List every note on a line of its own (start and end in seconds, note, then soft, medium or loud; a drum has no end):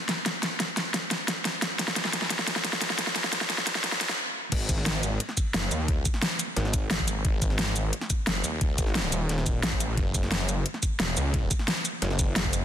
0.09 snare medium
0.09 closed hi-hat medium
0.26 snare medium
0.26 closed hi-hat medium
0.43 snare medium
0.43 closed hi-hat medium
0.60 snare medium
0.60 closed hi-hat medium
0.69 kick medium
0.77 snare medium
0.77 closed hi-hat medium
0.94 kick loud
0.94 snare medium
0.94 closed hi-hat medium
1.11 snare medium
1.11 closed hi-hat medium
1.28 kick loud
1.28 snare medium
1.28 closed hi-hat medium
1.45 snare medium
1.45 closed hi-hat medium
1.62 snare medium
1.62 closed hi-hat medium
1.79 kick loud
1.79 snare medium
1.79 closed hi-hat medium
1.88 snare medium
1.96 snare medium
1.96 closed hi-hat medium
2.05 kick medium
2.05 snare medium
2.13 snare medium
2.13 closed hi-hat medium
2.22 snare medium
2.30 kick loud
2.30 snare loud
2.30 closed hi-hat loud
2.39 snare medium
2.47 snare loud
2.47 closed hi-hat medium
2.56 snare medium
2.64 kick loud
2.64 snare loud
2.64 closed hi-hat loud
2.73 snare medium
2.81 snare loud
2.81 closed hi-hat medium
2.90 snare medium
2.99 snare loud
2.99 closed hi-hat loud
3.07 snare medium
3.16 snare loud
3.16 closed hi-hat medium
3.24 snare medium
3.33 snare loud
3.33 closed hi-hat loud
3.41 kick medium
3.41 snare medium
3.50 snare loud
3.50 closed hi-hat medium
3.58 snare medium
3.67 kick loud
3.67 snare loud
3.67 closed hi-hat loud
3.75 snare loud
3.84 snare loud
3.84 closed hi-hat medium
3.92 snare medium
4.01 kick loud
4.01 snare loud
4.01 closed hi-hat loud
4.09 snare loud
4.52 4.68 G#1 loud
4.52 kick loud
4.52 closed hi-hat medium
4.52 crash loud
4.69 5.19 G#1 loud
4.69 kick loud
4.69 closed hi-hat loud
4.69 shaker medium
4.78 snare soft
4.86 snare loud
4.86 closed hi-hat medium
5.03 closed hi-hat loud
5.03 shaker medium
5.20 closed hi-hat medium
5.29 snare soft
5.37 kick medium
5.37 closed hi-hat loud
5.37 shaker medium
5.54 5.70 F#1 medium
5.54 snare loud
5.54 closed hi-hat medium
5.71 6.04 D#2 loud
5.71 closed hi-hat loud
5.71 shaker medium
5.88 kick loud
5.88 closed hi-hat medium
6.05 kick loud
6.05 closed hi-hat loud
6.05 shaker medium
6.14 snare soft
6.22 snare loud
6.22 closed hi-hat medium
6.39 closed hi-hat medium
6.39 shaker medium
6.57 7.23 G#1 medium
6.57 snare medium
6.57 closed hi-hat medium
6.65 snare soft
6.74 kick loud
6.74 closed hi-hat loud
6.74 shaker medium
6.91 snare loud
6.91 closed hi-hat medium
6.99 kick medium
7.08 closed hi-hat loud
7.08 shaker medium
7.25 7.40 G#1 loud
7.25 kick loud
7.25 closed hi-hat medium
7.42 7.92 G#1 loud
7.42 kick loud
7.42 closed hi-hat medium
7.42 shaker medium
7.50 snare soft
7.59 snare loud
7.59 closed hi-hat medium
7.76 closed hi-hat medium
7.76 shaker medium
7.93 closed hi-hat medium
8.01 snare soft
8.10 kick medium
8.10 closed hi-hat medium
8.10 shaker medium
8.27 8.43 F#1 loud
8.27 snare loud
8.27 closed hi-hat medium
8.44 8.77 D#2 loud
8.44 closed hi-hat loud
8.44 shaker medium
8.61 kick loud
8.61 closed hi-hat medium
8.78 9.11 G#1 loud
8.78 kick loud
8.78 closed hi-hat medium
8.78 shaker medium
8.87 snare soft
8.95 snare loud
8.95 closed hi-hat medium
9.12 9.62 D#1 loud
9.12 closed hi-hat medium
9.12 shaker medium
9.29 snare soft
9.29 closed hi-hat medium
9.38 snare soft
9.46 kick loud
9.46 closed hi-hat medium
9.46 shaker medium
9.63 9.96 A1 medium
9.63 snare loud
9.63 closed hi-hat medium
9.72 kick medium
9.80 closed hi-hat medium
9.80 shaker medium
9.97 10.13 F#1 loud
9.97 kick loud
9.97 closed hi-hat medium
10.15 10.64 F#1 loud
10.15 kick loud
10.15 closed hi-hat medium
10.15 shaker medium
10.23 snare soft
10.32 snare loud
10.32 closed hi-hat medium
10.49 closed hi-hat medium
10.49 shaker medium
10.66 closed hi-hat medium
10.74 snare soft
10.83 kick medium
10.83 closed hi-hat medium
10.83 shaker medium
11.00 11.15 E1 loud
11.00 snare loud
11.00 closed hi-hat medium
11.17 11.50 C#2 loud
11.17 closed hi-hat medium
11.17 shaker medium
11.34 kick loud
11.34 closed hi-hat medium
11.51 kick loud
11.51 closed hi-hat medium
11.51 shaker medium
11.59 snare soft
11.68 snare loud
11.68 closed hi-hat medium
11.85 closed hi-hat medium
11.85 shaker medium
12.02 12.65 F#1 loud
12.02 snare soft
12.02 closed hi-hat medium
12.11 snare soft
12.19 kick loud
12.19 closed hi-hat medium
12.19 shaker medium
12.36 snare loud
12.36 closed hi-hat medium
12.45 kick medium
12.53 closed hi-hat loud
12.53 shaker medium